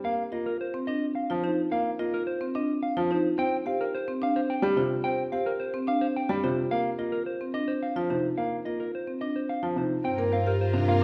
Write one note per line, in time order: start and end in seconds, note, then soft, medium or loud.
0.04 0.22 A#3 medium
0.04 0.23 F5 medium
0.32 0.50 A#3 medium
0.32 0.50 F4 medium
0.32 0.50 D#5 soft
0.46 0.60 A#4 medium
0.61 0.78 C5 medium
0.74 0.92 C4 medium
0.87 1.06 D4 medium
0.87 1.06 D#5 medium
1.15 1.34 F5 medium
1.30 1.48 F3 medium
1.30 1.48 F4 medium
1.44 1.62 D#4 medium
1.44 1.62 C5 medium
1.71 1.89 A#3 medium
1.71 1.90 F5 medium
1.99 2.17 A#3 medium
1.99 2.17 F4 medium
1.99 2.17 D#5 medium
2.14 2.26 A#4 medium
2.27 2.45 C5 medium
2.41 2.59 C4 medium
2.55 2.73 D4 medium
2.55 2.73 D#5 medium
2.83 3.00 F5 medium
2.97 3.14 F3 medium
2.97 3.15 F4 medium
3.11 3.28 D#4 medium
3.11 3.29 C5 medium
3.38 3.56 C4 medium
3.38 3.56 G5 medium
3.66 3.84 C4 medium
3.66 3.84 G4 medium
3.66 3.84 F5 medium
3.81 3.98 A#4 medium
3.95 4.12 C5 medium
4.08 4.26 C4 medium
4.22 4.39 D4 medium
4.22 4.40 F5 medium
4.36 4.54 C5 medium
4.50 4.67 G5 medium
4.62 4.81 G3 medium
4.62 4.81 G4 medium
4.76 4.95 C3 medium
4.76 4.95 F4 medium
4.76 4.95 C5 medium
5.04 5.23 C4 medium
5.04 5.22 G5 medium
5.32 5.50 C4 medium
5.32 5.50 G4 medium
5.32 5.50 F5 medium
5.46 5.64 A#4 medium
5.60 5.78 C5 medium
5.74 5.92 C4 medium
5.87 6.06 D4 medium
5.87 6.06 F5 medium
6.01 6.20 C5 medium
6.16 6.34 G5 medium
6.29 6.48 G3 medium
6.29 6.47 G4 medium
6.44 6.62 C3 medium
6.44 6.62 F4 medium
6.44 6.62 C5 medium
6.71 6.89 A#3 medium
6.71 6.89 F5 medium
6.99 7.17 A#3 medium
6.99 7.17 F4 medium
6.99 7.17 D#5 soft
7.12 7.26 A#4 medium
7.26 7.45 C5 medium
7.41 7.59 C4 medium
7.54 7.73 D4 medium
7.54 7.72 D#5 medium
7.68 7.86 C5 medium
7.83 8.00 F5 soft
7.96 8.14 F3 medium
7.96 8.14 F4 medium
8.10 8.28 C3 medium
8.10 8.28 D#4 medium
8.10 8.28 C5 medium
8.37 8.56 A#3 medium
8.37 8.56 F5 medium
8.65 8.84 A#3 soft
8.65 8.84 F4 medium
8.65 8.84 D#5 soft
8.80 8.94 A#4 medium
8.95 9.12 C5 medium
9.07 9.25 C4 soft
9.21 9.39 D4 medium
9.21 9.39 D#5 medium
9.36 9.53 C5 medium
9.49 9.67 F5 medium
9.63 9.81 F3 medium
9.63 9.81 F4 medium
9.76 9.95 C3 medium
9.76 9.95 D#4 medium
9.76 9.95 C5 soft
10.04 11.04 G2 medium
10.04 10.22 C4 medium
10.04 11.04 F4 medium
10.04 11.04 A#4 medium
10.04 10.23 G5 medium
10.18 10.36 A#3 medium
10.18 10.37 A#4 medium
10.32 10.50 C4 medium
10.32 10.50 C5 medium
10.32 10.51 F5 medium
10.46 10.64 G4 medium
10.46 10.65 A#4 medium
10.61 10.79 C5 medium
10.73 10.92 C3 medium
10.73 10.92 D4 medium
10.88 11.04 A#3 medium
10.88 11.04 C4 medium
10.88 11.04 F5 medium